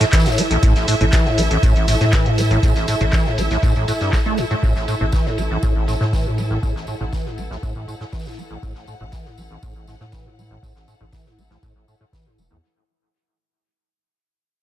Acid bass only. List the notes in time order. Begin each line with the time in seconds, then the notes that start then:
0.01 A2
0.13 E3
0.26 A2
0.38 A3
0.51 A1
0.63 A2
0.76 A1
0.88 A2
1.01 A2
1.13 E3
1.26 A2
1.38 A3
1.51 A1
1.63 A2
1.76 A1
1.88 A2
2.01 A2
2.13 E3
2.26 A2
2.38 A3
2.51 A1
2.63 A2
2.76 A1
2.88 A2
3.01 A2
3.13 E3
3.26 A2
3.38 A3
3.51 A1
3.63 A2
3.76 A1
3.88 A2
4.01 G2
4.13 A2
4.26 A3
4.38 A2
4.51 A2
4.63 A2
4.76 A1
4.88 A2
5.01 A2
5.13 E3
5.26 A2
5.38 A3
5.51 A1
5.63 A2
5.76 A1
5.88 A2
6.01 A2
6.13 E3
6.26 A2
6.38 A3
6.51 A1
6.63 A2
6.76 A1
6.88 A2
7.01 A2
7.13 E3
7.26 A2
7.38 A3
7.51 A1
7.63 A2
7.76 A1
7.88 A2
8.01 A2
8.13 E3
8.26 A2
8.38 A3
8.51 A1
8.63 A2
8.76 A1
8.88 A2
9.01 A2
9.13 E3
9.26 A2
9.38 A3
9.51 A1
9.63 A2
9.76 A1
9.88 A2
10.01 A2
10.13 E3
10.26 A2
10.38 A3
10.51 A1
10.63 A2
10.76 A1
10.88 A2
11.01 A2
11.13 E3
11.26 A2
11.38 A3
11.51 A1
11.63 A2
11.76 A1
11.88 A2
12.01 A2
12.13 E3
12.26 A2
12.38 A3
12.51 A1